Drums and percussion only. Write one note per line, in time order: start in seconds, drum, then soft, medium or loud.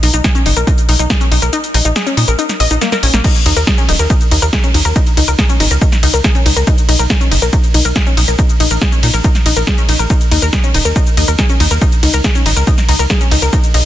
0.03 open hi-hat loud
0.14 closed hi-hat soft
0.14 shaker medium
0.24 kick loud
0.24 snare loud
0.24 closed hi-hat medium
0.24 shaker medium
0.35 closed hi-hat soft
0.35 shaker soft
0.46 open hi-hat medium
0.57 closed hi-hat soft
0.57 shaker medium
0.67 kick loud
0.67 closed hi-hat medium
0.67 shaker medium
0.78 closed hi-hat soft
0.78 shaker soft
0.89 open hi-hat loud
0.99 closed hi-hat soft
0.99 shaker medium
1.10 kick loud
1.10 snare loud
1.10 closed hi-hat medium
1.10 shaker medium
1.21 closed hi-hat soft
1.21 shaker soft
1.32 open hi-hat medium
1.42 closed hi-hat soft
1.42 shaker medium
1.53 closed hi-hat medium
1.53 shaker medium
1.64 closed hi-hat soft
1.64 shaker soft
1.74 open hi-hat loud
1.85 closed hi-hat soft
1.85 shaker medium
1.96 snare loud
1.96 closed hi-hat medium
1.96 shaker medium
2.07 closed hi-hat soft
2.07 shaker soft
2.17 open hi-hat medium
2.28 closed hi-hat soft
2.28 shaker medium
2.39 closed hi-hat medium
2.39 shaker medium
2.49 snare soft
2.49 closed hi-hat soft
2.49 shaker soft
2.60 open hi-hat loud
2.71 closed hi-hat soft
2.71 shaker medium
2.82 snare medium
2.82 closed hi-hat medium
2.82 shaker medium
2.92 snare medium
2.92 closed hi-hat soft
2.92 shaker soft
3.03 open hi-hat medium
3.14 snare medium
3.14 shaker medium
3.24 kick loud
3.24 closed hi-hat medium
3.24 crash medium
3.24 shaker medium
3.35 closed hi-hat soft
3.35 shaker soft
3.46 open hi-hat loud
3.46 ride medium
3.57 closed hi-hat soft
3.57 shaker medium
3.67 kick loud
3.67 snare loud
3.67 closed hi-hat medium
3.67 shaker medium
3.78 closed hi-hat soft
3.78 shaker soft
3.89 open hi-hat medium
3.89 ride medium
3.99 closed hi-hat soft
3.99 shaker medium
4.10 kick loud
4.10 closed hi-hat medium
4.10 shaker soft
4.21 closed hi-hat soft
4.21 shaker soft
4.31 open hi-hat loud
4.31 ride medium
4.42 closed hi-hat soft
4.42 shaker medium
4.53 kick loud
4.53 snare loud
4.53 closed hi-hat medium
4.53 shaker medium
4.64 closed hi-hat soft
4.64 shaker soft
4.74 open hi-hat medium
4.74 ride medium
4.85 closed hi-hat soft
4.85 shaker medium
4.96 kick loud
4.96 closed hi-hat medium
4.96 shaker medium
5.07 closed hi-hat soft
5.07 shaker soft
5.17 open hi-hat loud
5.17 ride medium
5.28 closed hi-hat soft
5.28 shaker medium
5.39 kick loud
5.39 snare loud
5.39 closed hi-hat medium
5.39 shaker medium
5.49 closed hi-hat soft
5.49 shaker soft
5.60 open hi-hat loud
5.60 ride medium
5.71 closed hi-hat soft
5.71 shaker medium
5.81 kick loud
5.81 closed hi-hat medium
5.81 shaker medium
5.92 snare soft
5.92 closed hi-hat soft
5.92 shaker soft
6.03 open hi-hat loud
6.03 ride medium
6.14 closed hi-hat soft
6.14 shaker medium
6.24 kick loud
6.24 snare loud
6.24 closed hi-hat medium
6.24 shaker medium
6.35 closed hi-hat soft
6.35 shaker soft
6.46 open hi-hat loud
6.46 ride medium
6.56 closed hi-hat soft
6.56 shaker medium
6.67 kick loud
6.67 closed hi-hat medium
6.67 shaker medium
6.78 closed hi-hat soft
6.78 shaker soft
6.89 open hi-hat loud
6.89 ride medium
6.99 shaker medium
7.10 kick loud
7.10 snare loud
7.10 closed hi-hat medium
7.10 shaker medium
7.21 closed hi-hat soft
7.21 shaker soft
7.32 open hi-hat loud
7.32 ride medium
7.42 closed hi-hat soft
7.42 shaker medium
7.53 kick loud
7.53 closed hi-hat medium
7.53 shaker medium
7.64 closed hi-hat soft
7.64 shaker soft
7.74 open hi-hat loud
7.74 ride medium
7.85 shaker medium
7.96 kick loud
7.96 snare loud
7.96 closed hi-hat medium
7.96 shaker medium
8.07 closed hi-hat soft
8.07 shaker soft
8.17 open hi-hat loud
8.17 ride medium
8.28 closed hi-hat soft
8.28 shaker medium
8.39 kick loud
8.39 closed hi-hat medium
8.39 shaker medium
8.49 closed hi-hat soft
8.49 shaker soft
8.60 open hi-hat loud
8.60 ride medium
8.71 closed hi-hat soft
8.71 shaker medium
8.81 kick loud
8.81 snare loud
8.81 closed hi-hat medium
8.81 shaker medium
8.92 closed hi-hat soft
8.92 shaker soft
9.03 open hi-hat loud
9.03 ride medium
9.14 closed hi-hat soft
9.14 shaker medium
9.24 kick loud
9.24 closed hi-hat medium
9.24 shaker medium
9.35 snare soft
9.35 closed hi-hat soft
9.35 shaker soft
9.46 open hi-hat loud
9.46 ride medium
9.56 closed hi-hat soft
9.56 shaker medium
9.67 kick loud
9.67 snare loud
9.67 closed hi-hat medium
9.67 shaker medium
9.78 closed hi-hat soft
9.78 shaker soft
9.89 open hi-hat loud
9.89 ride medium
9.99 closed hi-hat soft
9.99 shaker medium
10.10 kick loud
10.10 closed hi-hat medium
10.10 shaker medium
10.21 closed hi-hat soft
10.21 shaker soft
10.31 open hi-hat loud
10.31 ride medium
10.42 closed hi-hat soft
10.42 shaker medium
10.53 kick loud
10.53 snare loud
10.53 closed hi-hat medium
10.53 shaker medium
10.64 closed hi-hat soft
10.64 shaker soft
10.74 open hi-hat loud
10.74 ride medium
10.85 closed hi-hat soft
10.85 shaker medium
10.96 kick loud
10.96 closed hi-hat medium
10.96 shaker medium
11.07 closed hi-hat soft
11.07 shaker soft
11.17 open hi-hat loud
11.17 ride medium
11.28 closed hi-hat soft
11.28 shaker medium
11.39 kick loud
11.39 snare loud
11.39 closed hi-hat medium
11.39 shaker medium
11.49 closed hi-hat soft
11.49 shaker soft
11.60 open hi-hat medium
11.60 ride medium
11.71 shaker medium
11.82 kick loud
11.82 closed hi-hat medium
11.82 shaker medium
11.92 closed hi-hat soft
11.92 shaker soft
12.03 open hi-hat loud
12.03 ride medium
12.14 closed hi-hat soft
12.14 shaker medium
12.24 kick loud
12.24 snare loud
12.24 closed hi-hat medium
12.24 shaker medium
12.35 closed hi-hat soft
12.35 shaker soft
12.46 open hi-hat medium
12.46 ride medium
12.56 closed hi-hat soft
12.56 shaker medium
12.67 kick loud
12.67 closed hi-hat medium
12.67 shaker medium
12.78 snare soft
12.78 closed hi-hat soft
12.78 shaker soft
12.89 open hi-hat loud
12.89 ride medium
12.99 closed hi-hat soft
12.99 shaker medium
13.10 kick loud
13.10 snare loud
13.10 closed hi-hat medium
13.10 shaker medium
13.21 closed hi-hat soft
13.21 shaker soft
13.31 open hi-hat medium
13.31 ride medium
13.42 closed hi-hat soft
13.42 shaker medium
13.53 kick loud
13.53 closed hi-hat medium
13.53 shaker medium
13.64 closed hi-hat soft
13.64 shaker soft
13.74 open hi-hat loud
13.74 ride medium